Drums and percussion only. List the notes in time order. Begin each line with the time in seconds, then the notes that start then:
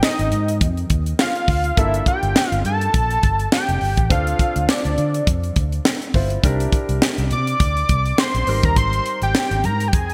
0.03 snare
0.19 closed hi-hat
0.32 closed hi-hat
0.48 closed hi-hat
0.61 kick, closed hi-hat
0.77 closed hi-hat
0.90 kick, closed hi-hat
1.06 closed hi-hat
1.19 snare
1.35 closed hi-hat
1.48 kick, open hi-hat
1.64 closed hi-hat
1.77 kick, closed hi-hat
1.94 closed hi-hat
2.06 kick, closed hi-hat
2.23 closed hi-hat
2.36 snare
2.52 closed hi-hat
2.65 closed hi-hat
2.81 closed hi-hat
2.94 kick, closed hi-hat
3.10 closed hi-hat
3.23 kick, closed hi-hat
3.39 closed hi-hat
3.52 snare
3.69 closed hi-hat
3.81 open hi-hat
3.97 kick, closed hi-hat
4.10 kick, closed hi-hat
4.27 closed hi-hat
4.39 kick, closed hi-hat
4.56 closed hi-hat
4.69 snare
4.85 closed hi-hat
4.98 closed hi-hat
5.14 closed hi-hat
5.27 kick, closed hi-hat
5.44 closed hi-hat
5.56 kick, closed hi-hat
5.72 closed hi-hat
5.85 snare
6.02 closed hi-hat
6.14 kick, open hi-hat
6.30 closed hi-hat
6.44 kick, closed hi-hat
6.60 closed hi-hat
6.72 kick, closed hi-hat
6.89 closed hi-hat
7.02 snare
7.18 closed hi-hat
7.31 closed hi-hat
7.47 closed hi-hat
7.60 kick, closed hi-hat
7.77 closed hi-hat
7.89 kick, closed hi-hat
8.06 closed hi-hat
8.18 snare
8.35 closed hi-hat
8.47 open hi-hat
8.63 kick, closed hi-hat
8.76 kick, closed hi-hat
8.93 closed hi-hat
9.06 closed hi-hat
9.22 closed hi-hat
9.35 snare
9.51 closed hi-hat
9.64 closed hi-hat
9.80 closed hi-hat
9.93 kick, closed hi-hat
10.10 closed hi-hat